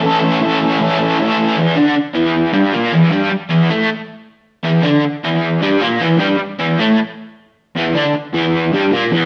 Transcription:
\new Staff \with { instrumentName = "Overdriven electric guitar" } { \clef bass \time 4/4 \key a \major \tempo 4 = 155 <a, e a cis' a'>8 <a cis' a'>8 <e a cis' a'>8 <a cis' a'>8 <a, e a cis' a'>8 <a cis' a'>8 <e a cis' a'>4 | <e, e>8 <d d'>8 r8 <e, e>4 <g, g>8 <ais, ais>8 <e, e>8 | <g, g>8 r8 <e, e>8 <a, a>8 r2 | <e, e>8 <d d'>8 r8 <e, e>4 <g, g>8 <ais, ais>8 <e, e>8 |
<g, g>8 r8 <e, e>8 <a, a>8 r2 | <e, e>8 <d d'>8 r8 <e, e>4 <g, g>8 <ais, ais>8 <e, e>8 | }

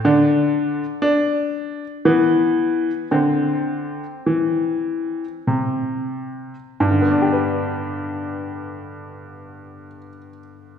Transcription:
<<
  \new Staff \with { instrumentName = "Grand piano" } { \time 3/4 \key g \major \tempo 4 = 50 d'2 b4 | c'2. | <g, d b d' g' b'>2. | }
  \new Staff \with { instrumentName = "Grand piano" } { \clef bass \time 3/4 \key g \major d4 d'4 e4 | d4 e4 c4 | r2. | }
>>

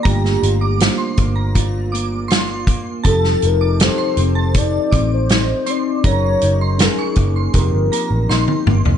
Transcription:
<<
  \new Staff \with { instrumentName = "Synth bell" } { \time 4/4 \key f \mixolydian \tempo 4 = 80 bes''8 r16 d'''16 r16 c'''16 r16 bes''8 r16 d'''16 r16 c'''8. r16 | a''8 r16 d'''16 r16 c'''16 r16 a''8 r16 d'''16 r8. c'''16 r16 | bes''8 r16 c'''16 r16 des'''16 r16 c'''8 r16 bes''16 r16 c'''8. r16 | }
  \new Staff \with { instrumentName = "Soft synth lead" } { \time 4/4 \key f \mixolydian g'4 r2. | a'8 bes'8 c''4 d''8. c''8. d''8 | des''4 aes'4 bes'4. r8 | }
  \new Staff \with { instrumentName = "Reed electric piano" } { \time 4/4 \key f \mixolydian <a bes d' f'>4 <bes d' f' c''>2 r4 | <c' ees' g' a'>4 <c' ees' g' a'>2 r4 | <des' ees' aes' bes'>4 <des' ees' aes' bes'>4 <c' ees' g' bes'>2 | }
  \new Staff \with { instrumentName = "Clean electric guitar" } { \time 4/4 \key f \mixolydian g8 f'4 bes8 f'8 bes8 f'8 bes8 | f8 ees'8 a'8 c'8 ees'8 c'8 ees'8 c'8 | ges8 ees'8 aes'8 bes8 f8 bes8 ees'8 bes8 | }
  \new Staff \with { instrumentName = "Picked electric bass" } { \clef bass \time 4/4 \key f \mixolydian g,,8 g,,8. r16 g,,2 r8 | f,,8 f,,8. r16 f,,4 a,,4 r8 | ges,,8 ges,,8. r16 ges,,8 f,,16 g,,16 r16 a,,16 bes,,16 r16 g,,16 f,,16 | }
  \new DrumStaff \with { instrumentName = "Drums" } \drummode { \time 4/4 <hh bd>16 sn16 hh8 <hh sn>8 <hh bd>8 <hh bd>8 hh8 <hh sn>8 <hh bd>8 | <hh bd>16 sn16 hh8 <hh sn>8 hh8 <hh bd>8 <hh bd>8 <hh sn>8 hh8 | <hh bd>8 hh8 <hh sn>8 <hh bd>8 <hh bd>8 hh8 sn16 tommh16 toml16 tomfh16 | }
>>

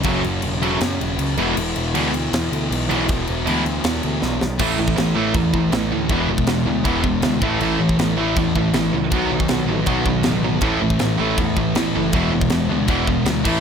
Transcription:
<<
  \new Staff \with { instrumentName = "Distorted electric guitar" } { \clef bass \time 4/4 \key a \major \tempo 4 = 159 <fis cis' fis' a'>8 r4 <fis cis' fis' a'>8 r4. <e gis b e' gis'>8 | r4 <e gis b e' gis'>8 r2 <e gis b e' gis'>8 | r4 <e gis b e' gis'>8 r2 r8 | <a, e a>8 <a, e>8 <a, e>8 <a, e a>8 <a, e>8 <a, e>8 <a, e>8 <a, e>8 |
<e gis b>8 <e gis>8 <e gis>8 <e gis>8 <e gis b>8 <e gis>8 <e gis>8 <a, e a>8 | <a, e a>8 <a, e>8 <a, e>8 <a, e a>8 <a, e>8 <a, e>8 <a, e>8 <a, e>8 | <b, dis fis>8 <b, dis>8 <b, dis>8 <b, dis>8 <b, dis fis>8 <b, dis>8 <b, dis>8 <b, dis>8 | <a, e a>8 <a, e>8 <a, e>8 <a, e a>8 <a, e>8 <a, e>8 <a, e>8 <a, e>8 |
<e gis b>8 <e gis>8 <e gis>8 <e gis>8 <e gis b>8 <e gis>8 <e gis>8 <a, e a>8 | }
  \new Staff \with { instrumentName = "Distorted electric guitar" } { \clef bass \time 4/4 \key a \major <fis, cis fis>2.~ <fis, cis fis>8 <e, b, e>8~ | <e, b, e>2.~ <e, b, e>8 <e, b, e>8~ | <e, b, e>2.~ <e, b, e>8 r8 | <a, e a>4. <a, e a>4. <a, e a>4 |
<e, b, e>4. <e, b, e>4. <e, b, e>8 <a, e a>8~ | <a, e a>4 <a, e a>4. <a, e a>4 r8 | <b, fis b>4. <b, fis b>4. <b, fis b>4 | <a, e a>4. <a, e a>4. <a, e a>4 |
<e, b, e>4. <e, b, e>4. <e, b, e>8 <a, e a>8 | }
  \new Staff \with { instrumentName = "Distorted electric guitar" } { \clef bass \time 4/4 \key a \major <fis, cis fis>8 r4 <fis, cis fis>8 r4. <e, b, e>8 | r4 <e, b, e>8 r2 <e, b, e>8 | r4 <e, b, e>8 r2 r8 | <a, e a>8 <a, e>8 <a, e>8 <a, e a>8 <a, e>8 <a, e>8 <a, e>8 <a, e>8 |
<e, b, e>8 <e, b,>8 <e, b,>8 <e, b,>8 <e, b, e>8 <e, b,>8 <e, b,>8 <a, e a>8 | <a, e a>8 <a, e>8 <a, e>8 <a, e a>8 <a, e>8 <a, e>8 <a, e>8 <a, e>8 | <b, fis b>8 <b, fis>8 <b, fis>8 <b, fis>8 <b, fis b>8 <b, fis>8 <b, fis>8 <b, fis>8 | <a, e a>8 <a, e>8 <a, e>8 <a, e a>8 <a, e>8 <a, e>8 <a, e>8 <a, e>8 |
<e, b, e>8 <e, b,>8 <e, b,>8 <e, b,>8 <e, b, e>8 <e, b,>8 <e, b,>8 <a, e a>8 | }
  \new Staff \with { instrumentName = "Picked electric bass" } { \clef bass \time 4/4 \key a \major fis,,8 fis,,8 e,,4 fis,8 e,,8 cis,8 e,,8 | e,,8 e,,8 d,4 e,8 d,8 b,,8 b,,8 | e,,8 e,,8 d,4 e,8 d,8 b,,8 b,,8 | a,,8 a,,8 a,,8 a,,8 e,8 a,,8 a,,8 d,8 |
e,,8 e,,8 e,,8 d,8 e,,4 d,8 a,,8 | a,,8 a,,8 a,,8 a,,8 e,8 a,,8 a,,8 cis,8 | b,,8 b,,8 b,,8 a,,8 b,,4 a,,4 | a,,8 a,,8 a,,8 a,,8 e,8 a,,8 a,,8 fis,,8 |
e,,8 e,,8 e,,8 d,8 e,,4 d,8 a,,8 | }
  \new DrumStaff \with { instrumentName = "Drums" } \drummode { \time 4/4 <cymc bd>8 cymc8 cymc8 cymc8 <cymc sn>8 cymc8 cymc8 cymc8 | cymc8 cymc8 cymc8 cymc8 <cymc sn>8 cymc8 cymc8 cymc8 | <cymc bd>8 cymc8 cymc8 cymc8 <cymc sn>8 cymc8 sn8 sn8 | <cymc bd>8. bd16 <cymc sn>4 <cymc bd>8 bd8 <cymc sn>4 |
<cymc bd>8. bd16 <cymc sn>4 <cymc bd>8 bd8 <cymc sn>8 bd8 | cymc8. bd16 <cymc sn>4 <cymc bd>8 bd8 <cymc sn>4 | <cymc bd>8. bd16 <cymc sn>4 <cymc bd>8 bd8 <cymc sn>4 | <cymc bd>8. bd16 <cymc sn>4 <cymc bd>8 bd8 <cymc sn>4 |
<cymc bd>8. bd16 <cymc sn>4 <cymc bd>8 bd8 <cymc sn>8 <cymc bd>8 | }
>>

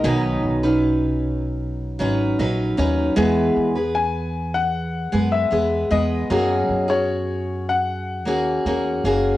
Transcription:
<<
  \new Staff \with { instrumentName = "Upright piano" } { \time 4/4 \key b \major \tempo 4 = 77 dis''8. r2. r16 | r4 gis''8. fis''4 e''8. dis''8~ | dis''8. cis''4 fis''4 r4 r16 | }
  \new Staff \with { instrumentName = "Steel-string acoustic guitar" } { \time 4/4 \key b \major <b, dis fis cis' dis' b'>8. <fis cis' dis' b'>4.~ <fis cis' dis' b'>16 <fis cis' dis' b'>8 <fis cis' dis' b'>8 <fis cis' dis' b'>8 | <e gis b gis' b'>8. <b gis' b'>4.~ <b gis' b'>16 <gis b gis' b'>8 <gis b gis' b'>8 <gis b gis' b'>8 | <fis ais cis' fis' gis'>8. <cis' fis' gis'>4.~ <cis' fis' gis'>16 <ais cis' fis' gis'>8 <ais cis' fis' gis'>8 <ais cis' fis' gis'>8 | }
  \new Staff \with { instrumentName = "Upright bass" } { \clef bass \time 4/4 \key b \major b,,8 b,,2 gis,,8 ais,,8 dis,8 | e,8 e,2 fis,8 e,8 e,8 | fis,8 fis,2 dis,8 e,8 fis,,8 | }
>>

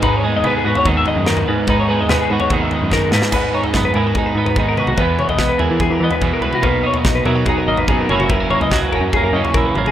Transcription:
<<
  \new Staff \with { instrumentName = "Clean electric guitar" } { \time 4/4 \key gis \minor \tempo 4 = 145 b'16 cis''16 b'16 dis''16 b'16 gis'16 b'16 cis''16 dis''16 e''16 dis''8 ais'8 b'8 | b'16 cis''16 b'16 dis''16 b'16 gis'16 b'16 cis''16 dis''16 e''16 dis''8 ais'8 b'8 | b'8 cis''16 dis''8 b'16 ais'8 gis'16 b'16 dis''16 b'16 gis'16 ais'16 b'16 fis'16 | b'8 cis''16 dis''8 b'16 ais'8 gis'16 ais'16 dis''16 b'16 gis'16 ais'16 b'16 fis'16 |
b'8 cis''16 dis''8 b'16 ais'8 gis'16 ais'16 dis''16 b'16 gis'16 ais'16 cis''16 fis'16 | ais'8 cis''16 dis''8 b'16 ais'8 gis'16 ais'16 dis''16 cis''16 ais'16 b'16 cis''16 gis'16 | }
  \new Staff \with { instrumentName = "Clean electric guitar" } { \time 4/4 \key gis \minor << { dis'4 b8 fis'2 r8 | dis'4 b8 fis'2 r8 | b8 dis'8 b8 e'16 fis'16 dis'8 b8 dis'8 fis'8 | b4 b8 gis'4 b4 b'8 |
ais8 dis'4 e'16 fis'16 dis'8 ais8 dis'8 <fis ais cis' e'>8 | b16 cis'16 ais8 fis'8 cis'8 ais8 cis'8 e'8 ais8 | } \\ { gis,8 gis4. dis4. gis,8~ | gis,8 gis4. dis4. gis,8 | gis,4. gis4. dis4 | e,4. e4. b,4 |
b,4. fis4. fis,8 fis,8~ | fis,4 fis4. cis4 fis,8 | } >> }
  \new Staff \with { instrumentName = "Overdriven electric guitar" } { \clef bass \time 4/4 \key gis \minor <gis, dis gis b dis'>8 <gis b dis'>8 <dis gis b dis'>8 <gis b dis'>8 <gis, dis gis b dis'>8 <gis b dis'>8 <dis gis b dis'>4 | <gis, dis gis b dis'>8 <gis b dis'>8 <dis gis b dis'>8 <gis b dis'>8 <gis, dis gis b dis'>8 <gis b dis'>8 <dis gis b dis'>4 | <gis, dis gis b dis'>4. <gis, dis gis b dis'>4. <gis, dis gis b dis'>4 | <e gis b e'>4. <e gis b e'>4. <e gis b e'>4 |
<b, fis b dis'>4. <b, fis b dis'>4. <b, fis b dis'>8 <fis, cis e ais e'>8~ | <fis, cis e ais e'>4 <fis, cis e ais e'>4. <fis, cis e ais e'>4 r8 | }
  \new Staff \with { instrumentName = "FM bass" } { \clef bass \time 4/4 \key gis \minor gis,8. dis,8 r16 gis,16 r16 dis,8 r16 fis,8. gis,16 r16 | gis,8. dis,8 r16 gis,16 r16 dis,8 r16 fis,8. gis,16 r16 | gis,8 r8 fis,8 gis,8 r8 gis,4~ gis,16 b,,16 | e,8. b,,8. e,16 e8 e16 e16 r16 e,16 r16 c,16 r16 |
b,,8 r8 ais,,8 b,8 r8 gis,,4 fis,,8~ | fis,,8. cis,8. fis,,16 fis,8 fis,16 fis,16 r16 ais,,8 gis,,8 | }
  \new DrumStaff \with { instrumentName = "Drums" } \drummode { \time 4/4 <bd tomfh>4 <tomfh toml>8. tomfh16 bd8 tomfh8 sn16 tomfh8. | <bd tomfh>4 <sn tomfh toml>8. tomfh16 <bd toml>8 tomfh8 <bd sn>8 sn16 sn16 | <cymc bd tomfh>8. tomfh16 <bd sn toml>8 tomfh8 <bd tomfh>8. tomfh16 bd8 toml16 toml16 | <bd tomfh>8 toml16 tomfh16 <bd sn toml>8 tomfh8 <bd tomfh>8. tomfh16 bd8 toml16 toml16 |
<bd tomfh>8. tomfh16 <bd sn toml>8 tomfh8 <bd tomfh>8. tomfh16 bd8 toml16 toml16 | <bd tomfh>8 toml16 tomfh16 <bd sn toml>8 tomfh8 <bd tomfh>8. tomfh16 bd8 toml16 toml16 | }
>>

